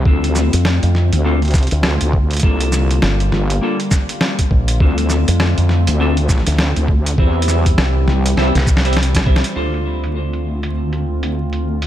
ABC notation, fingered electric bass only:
X:1
M:4/4
L:1/16
Q:"Swing 16ths" 1/4=101
K:Dm
V:1 name="Fingered electric bass" clef=bass
z3 F,,2 F,,2 z4 D,, z4 | z4 G,,,2 z8 B,,,2 | z3 F,,2 F,,2 z4 D,, z4 | z4 C,,2 z3 C,,6 z |
z16 |]